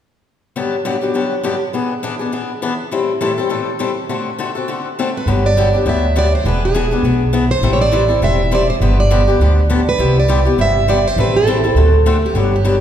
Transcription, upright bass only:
5.26 G1
5.86 D2
6.44 E1
7.03 B1
7.61 A1
8.21 E1
8.80 G1
9.39 D2
9.98 C2
10.57 G1
11.16 A1
11.75 D2
12.34 G1

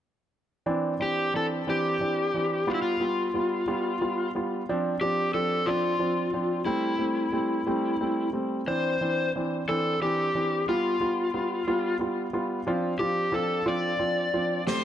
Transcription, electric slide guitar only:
1.02 G4
1.36 A4
1.70 G4
2.70 F4
2.74 E4
2.82 F4
5.01 G4
5.34 A4
5.66 F4
6.65 E4
8.68 C5
9.69 A4
10.02 G4
10.69 F4
12.99 G4
13.34 A4
13.68 D5
14.68 C5

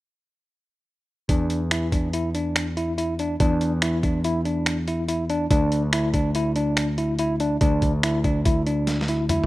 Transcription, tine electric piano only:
1.29 D4
1.71 E4
1.92 D4
2.14 E4
2.35 D4
2.77 E4
2.98 E4
3.20 D4
3.40 D4
3.82 E4
4.04 D4
4.25 E4
4.45 D4
4.88 E4
5.08 E4
5.30 D4
5.51 D4
5.93 E4
6.14 D4
6.36 E4
6.56 D4
6.98 E4
7.19 E4
7.41 D4
7.61 D4
8.03 E4
8.24 D4
8.46 E4
8.67 D4
9.09 E4
9.30 E4

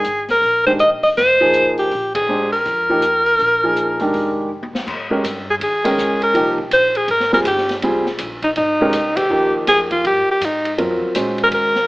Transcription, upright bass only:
0.05 G#1
0.41 A#1
1.03 A1
1.17 F1
1.92 A#1
2.66 F2
3.39 A#1
4.13 F1
4.73 D#2
4.87 G#2
5.24 G2
5.60 D#2
5.97 C#2
6.34 C2
6.71 A#1
7.08 G#1
7.44 G1
7.82 C2
8.20 A#1
8.57 G#1
8.93 C2
9.30 D#2
9.67 F2
10.04 G2
10.27 muted upright bass stroke
10.41 G#2
10.78 F#2
10.90 F2
11.02 C#2
11.15 A#2
11.51 D#2

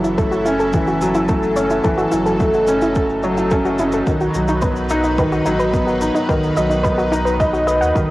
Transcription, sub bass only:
Already playing: F#1
1.85 F#1
2.12 F#1
4.07 B1
4.35 B1
5.46 A1
6.29 B1
6.57 B1
7.82 D#2
7.96 F#1

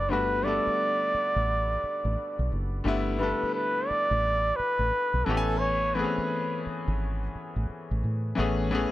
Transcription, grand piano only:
0.09 D3 G3 A3 B3
0.13 F#4
0.43 D3 G3 A3 B3
0.48 A4
2.84 D3 G3 A3 B3
2.88 E4
3.19 D3 G3 A3 B3
3.23 A4
5.26 E3 A3 B3 C#4
5.30 G4
5.37 G#5
5.95 E3 A3 B3 C4
5.99 G#4
6.04 C#4
8.35 E3 A3 B3 C#4
8.40 G#4
8.71 E3 A3 B3 C#4 G#4

